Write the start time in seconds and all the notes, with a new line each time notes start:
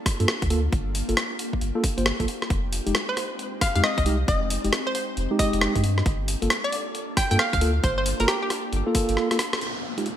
Already playing: A#3 D4 F4 A4
0.06 kick, cross-stick, open hi-hat
0.20 G2 A#3 F4 A4, closed hi-hat
0.28 cross-stick
0.42 D2, kick, closed hi-hat
0.50 A#3 F4 G4 A4, open hi-hat
0.73 G1, kick, closed hi-hat
0.95 open hi-hat
1.09 G1 A#3 F4 A4, closed hi-hat
1.17 cross-stick, closed hi-hat
1.39 open hi-hat
1.53 kick
1.61 G1, closed hi-hat
1.75 A#3 F4 A4
1.84 kick, open hi-hat
1.98 G1 A#3 F4 C5, closed hi-hat
2.06 cross-stick
2.20 A#1 A#3 F4 A4, kick, closed hi-hat
2.28 open hi-hat
2.42 cross-stick
2.50 F1 G#3 C4 D#4, kick, closed hi-hat
2.73 open hi-hat
2.87 F1 G#3 D#4 G4, closed hi-hat
2.95 cross-stick, closed hi-hat
3.09 C5
3.17 cross-stick, open hi-hat
3.39 closed hi-hat
3.61 F5, kick, cross-stick, open hi-hat
3.75 F2 G#3 D#4 G4 F5, closed hi-hat
3.84 D#5, cross-stick
3.98 C2 D#5, kick, closed hi-hat
4.06 G#3 D#4 G4, open hi-hat
4.28 F1 D#5, kick, closed hi-hat
4.50 open hi-hat
4.64 F1 G#3 D#4 G4, closed hi-hat
4.73 cross-stick, closed hi-hat
4.87 C5
4.95 C5, open hi-hat
5.17 F1, closed hi-hat
5.31 G#3 D#4 G4
5.39 G#3 D#4 G4 D#5, kick, open hi-hat
5.53 F1, closed hi-hat
5.61 cross-stick
5.75 G2 G#3 D#4 G4, kick, closed hi-hat
5.84 A#3 D4 F4 A4, open hi-hat
5.98 cross-stick
6.06 G1, kick, closed hi-hat
6.28 open hi-hat
6.42 G1 A#3 F4 A4, closed hi-hat
6.50 cross-stick, closed hi-hat
6.64 D5
6.73 open hi-hat
6.95 closed hi-hat
7.17 G5, kick, cross-stick, open hi-hat
7.31 G2 A#3 F4 A4 G5, closed hi-hat
7.39 F5, cross-stick
7.53 D2 F5, kick, closed hi-hat
7.61 A#3 F4 A4, open hi-hat
7.84 G1 C5, kick, closed hi-hat
7.98 C5
8.06 open hi-hat
8.20 G1 A#3 F4 A4 A#4, closed hi-hat
8.28 G4, cross-stick, closed hi-hat
8.42 G4
8.50 cross-stick, open hi-hat
8.73 G1, closed hi-hat
8.87 A#3 F4 A4
8.95 A#3 F4 A4, kick, open hi-hat
9.09 G1, closed hi-hat
9.17 cross-stick
9.31 A#3 F4 A4, cross-stick, closed hi-hat
9.39 cross-stick, open hi-hat
9.53 cross-stick, closed hi-hat
9.61 F2 G#3 C4 D#4 G4, closed hi-hat, downlifter
9.98 G#3 D#4 F4 G4, closed hi-hat
10.06 closed hi-hat